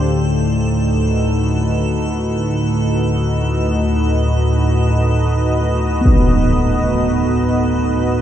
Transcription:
Already playing: D2 A2 A4
0.02 D#4
0.57 F#4
0.76 B4
2.64 D#5
6.01 B3
6.05 impact

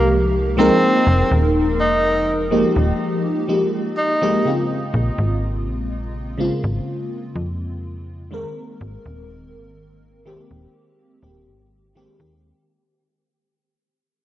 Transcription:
Already playing: C2 F3 G#3 A#3 D#4 G4
0.57 F3 G#3 A#3 C4 D#4 A#4
1.07 F1
1.32 D#1
1.80 F1 D#4
2.51 F3 G#3 A#3 D#4 G4
2.77 D#1
3.48 F3 G#3 A#3 D#4 G4
3.97 D#4
4.21 F3 G#3 A#3 D#4 G4
4.44 C#3 G#3 A#3 C4 F4
4.94 A#1
5.18 G#1
5.67 A#1
6.37 C#3 G#3 A#3 C4 F4
6.64 G#1
7.36 F2
8.31 D#3 G#3 A#3 C4 A#4
8.81 G#1
9.06 D#1
9.54 G#1
10.25 D#3 G#3 A#3 C4 G4
10.51 D#1
11.22 D#1 D#3 G#3 A#3 C4 G4
11.47 G#1
11.95 D#3 G#3 A#3 C4 G4
12.19 D#2 D#3 G#3 A#3 C4 G4

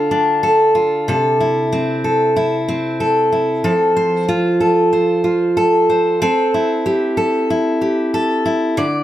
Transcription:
Already playing: D3 F4 A4
0.11 D4
0.43 A4
0.75 F4
1.08 C3 A4
1.40 E4
1.72 C4
2.04 A4
2.36 E4
2.68 C4
3.00 A4
3.32 E4
3.64 F3 A4
3.96 C5
4.28 F4
4.60 A4
4.93 C5
5.24 F4
5.57 A4
5.90 C5
6.22 C4 A4
6.54 E4
6.86 G4
7.17 A4
7.50 E4
7.81 G4
8.14 A4
8.46 E4
8.77 D3 D5

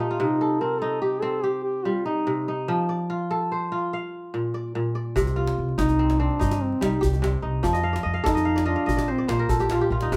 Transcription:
Already playing: A#2 F4 G4 A4 C5
0.00 D#4
0.11 F4
0.20 C3 D#4
0.41 A4
0.60 C4 A#4
0.80 D#4 A4
1.01 G4
1.21 C4 A4
1.43 G4
1.63 G4
1.85 G3 F4
2.06 D#4
2.27 C3
2.48 D#4
2.68 F3
2.89 D5
3.10 F4
3.31 A4
3.52 C5
3.72 F4
3.93 F5
4.34 A#2
4.54 D5
4.75 A#2
4.95 D5
5.16 C2 C3, djembe bass
5.27 djembe tone
5.36 F4, djembe slap
5.47 djembe slap
5.58 C2
5.68 djembe slap
5.78 C2 D#4, djembe slap, djembe bass
5.89 djembe slap, djembe tone
5.99 C4
6.10 djembe slap
6.20 C4 D4
6.30 djembe slap
6.39 G2 D#4, djembe bass
6.51 djembe slap, djembe tone
6.62 C4
6.72 djembe slap
6.81 C2 G3 D#4, djembe slap
6.92 djembe slap
7.01 C2 G4, djembe bass
7.13 djembe tone
7.22 C3, djembe slap
7.42 C2 D#4
7.63 F2 F3 D5, djembe bass
7.73 D#5, djembe tone
7.83 F5, djembe slap
7.93 D5, djembe slap
8.03 F2 D#5
8.14 F5, djembe slap
8.24 F2 D#4 A4 D5, djembe slap, djembe bass
8.35 D#5, djembe slap, djembe tone
8.45 F5
8.56 D5, djembe slap
8.65 D4 F4 D#5
8.76 F5, djembe slap
8.86 A#1 D#5, djembe bass
8.97 D5, djembe slap, djembe tone
9.08 C4 C5
9.18 D5, djembe slap
9.28 A#1 A#2 A#3 C5, djembe slap
9.39 A#4, djembe slap
9.49 A#1 A4, djembe bass
9.60 G4, djembe tone
9.70 A#2 F4, djembe slap
9.81 G4
9.90 A#1 F4
10.01 D#4, djembe slap
10.12 C2 C3, djembe bass

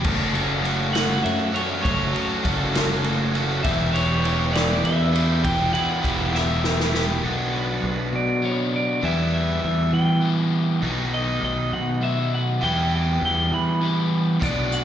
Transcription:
0.03 F#1 F#3 A3 C#4 F#4 A4 C#5 A5 E6, kick, crash
0.33 F#3 A3 C#4 F#4 A4, ride
0.63 F#3 A3 C#4 F#4 A4, ride
0.93 F#3 A3 C#4 F#4 A4 F#5, snare, ride
1.24 F#2 E5, ride
1.53 F#3 A3 C#4 F#4 A4 C#5, ride
1.81 F#3 A3 C#4 F#4 C#5
1.85 F#1 F#3 A3 C#4 A4, kick, ride
2.14 F#3 A3 C#4 F#4 A4, ride
2.44 F#1 F#3 A3 C#4 F#4 A4, kick, ride
2.74 F#3 A3 C#4 F#4 A4, snare, ride
3.04 ride
3.35 F#3 A3 C#4 F#4 A4, ride
3.63 E1 E3 B3 E4 G4 E5 B5, kick, ride
3.93 E3 B3 E4 G4 C#5, ride
4.24 E3 B3 E4 G4, ride
4.53 E3 B3 E4 G4 D5, snare, ride
4.84 E2 E5, ride
5.13 E3 B3 E4 G4, ride
5.42 E1 E3 B3 E4 G4 G5 A5, kick, ride
5.73 E3 B3 E4 G4 F#5, ride
6.03 E1 E3 B3 E4 G4, kick, ride
6.33 E3 B3 E4 G4 E5, snare
6.64 snare
6.80 snare
6.94 E3 B3 E4 G4, snare
7.22 B1 B2 F#3 B3 D4
7.27 F#4
7.55 B4
7.84 B1 B4
8.13 B2 D5
8.42 F#3 B3 D4 F#4 C#5
8.76 D5
9.01 E2 E3 G3 B3 E4 G4 E5
9.34 E5
9.64 E2 E5
9.93 E3 G5
10.21 E3 B3 E4 G4
10.82 B1 B2 D#3 F#3 B3 D#4
10.86 F#4
11.14 D#5
11.44 B1 D#5
11.73 B2 F#5
12.01 F#3 B3 D#4 F#4 E5
12.34 F#5
12.61 E2 E3 G3 B3 E4 G4 G5
12.94 G5
13.22 E2 G5
13.52 E3 B5
13.81 E3 B3 E4 G4
14.40 B1 B2 F#3 B3 D4 D5, kick, closed hi-hat
14.44 F#4
14.72 F#5, closed hi-hat

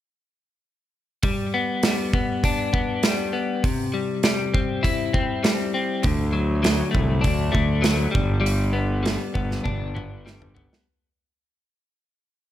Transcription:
1.23 G3, kick, open hi-hat
1.54 B3
1.83 G3, snare, open hi-hat
2.14 B3, kick
2.44 D4, kick, open hi-hat
2.73 B3, kick
3.03 G3, snare, open hi-hat
3.33 B3
3.64 C3, kick, open hi-hat
3.94 G3
4.23 G3, snare, open hi-hat
4.54 C4, kick
4.83 E4, kick, open hi-hat
5.13 C4, kick
5.43 G3, snare, open hi-hat
5.74 C4
6.03 D2 D3, kick, open hi-hat
6.33 F#3
6.63 F#3, snare, open hi-hat
6.91 C2 A3, kick
7.21 D2 D4, kick, open hi-hat
7.52 D2 A3, kick
7.82 F#3, snare, open hi-hat
8.11 G3, kick
8.16 G1
8.41 G3
8.46 open hi-hat
8.73 B3
9.03 G3, snare, open hi-hat
9.34 G1 B3, kick
9.51 snare
9.64 G1 D4, kick, high tom
9.95 B3, mid tom
10.26 G3, snare
10.42 mid tom
10.55 B3, floor tom
10.73 snare

